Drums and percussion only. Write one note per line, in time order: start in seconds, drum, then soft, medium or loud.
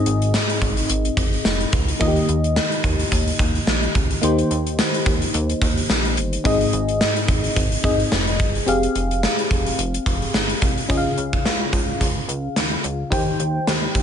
0.06 closed hi-hat medium
0.22 closed hi-hat soft
0.34 snare loud
0.34 tambourine medium
0.49 closed hi-hat medium
0.62 kick medium
0.62 closed hi-hat medium
0.77 closed hi-hat medium
0.89 closed hi-hat loud
1.05 closed hi-hat medium
1.17 kick medium
1.17 closed hi-hat medium
1.33 closed hi-hat soft
1.45 snare loud
1.45 tambourine medium
1.60 closed hi-hat medium
1.73 kick loud
1.73 closed hi-hat medium
1.88 closed hi-hat medium
2.01 kick loud
2.01 closed hi-hat medium
2.16 closed hi-hat soft
2.29 closed hi-hat medium
2.44 closed hi-hat soft
2.56 snare loud
2.56 tambourine medium
2.72 closed hi-hat medium
2.84 kick medium
2.84 closed hi-hat medium
2.99 closed hi-hat medium
3.12 kick medium
3.12 closed hi-hat medium
3.27 closed hi-hat medium
3.39 kick loud
3.39 closed hi-hat medium
3.55 closed hi-hat soft
3.67 snare loud
3.67 tambourine medium
3.83 closed hi-hat soft
3.95 kick loud
3.95 closed hi-hat medium
4.11 closed hi-hat soft
4.23 closed hi-hat loud
4.38 closed hi-hat medium
4.51 closed hi-hat medium
4.67 closed hi-hat soft
4.79 snare loud
4.79 tambourine medium
4.94 closed hi-hat medium
5.06 kick medium
5.06 closed hi-hat medium
5.22 closed hi-hat medium
5.34 closed hi-hat medium
5.49 closed hi-hat medium
5.62 kick medium
5.62 closed hi-hat medium
5.77 closed hi-hat soft
5.90 snare loud
5.90 tambourine medium
6.05 closed hi-hat medium
6.17 closed hi-hat medium
6.33 closed hi-hat medium
6.45 kick loud
6.45 closed hi-hat loud
6.61 closed hi-hat medium
6.73 closed hi-hat medium
6.88 closed hi-hat soft
7.01 snare loud
7.01 tambourine medium
7.16 closed hi-hat medium
7.28 kick medium
7.28 closed hi-hat medium
7.44 closed hi-hat medium
7.56 kick medium
7.56 closed hi-hat medium
7.72 closed hi-hat medium
7.84 kick loud
7.84 closed hi-hat medium
8.00 closed hi-hat soft
8.12 snare loud
8.12 tambourine medium
8.27 closed hi-hat medium
8.39 kick loud
8.39 closed hi-hat medium
8.55 closed hi-hat medium
8.68 closed hi-hat loud
8.83 closed hi-hat medium
8.95 closed hi-hat medium
9.11 closed hi-hat soft
9.23 snare loud
9.23 tambourine medium
9.39 closed hi-hat medium
9.51 kick medium
9.51 closed hi-hat medium
9.66 closed hi-hat medium
9.79 closed hi-hat loud
9.94 closed hi-hat medium
10.06 kick medium
10.06 closed hi-hat medium
10.22 closed hi-hat soft
10.34 snare loud
10.34 tambourine medium
10.49 closed hi-hat medium
10.62 kick medium
10.62 closed hi-hat medium
10.77 closed hi-hat medium
10.90 kick loud
10.90 closed hi-hat medium
11.18 closed hi-hat medium
11.33 kick medium
11.45 snare loud
11.45 closed hi-hat medium
11.73 kick medium
11.73 closed hi-hat medium
12.01 kick medium
12.01 closed hi-hat medium
12.29 closed hi-hat medium
12.56 snare loud
12.56 closed hi-hat medium
12.84 closed hi-hat medium
13.12 kick loud
13.12 closed hi-hat medium
13.40 closed hi-hat medium
13.67 snare loud
13.67 closed hi-hat medium
13.95 kick medium
13.95 closed hi-hat medium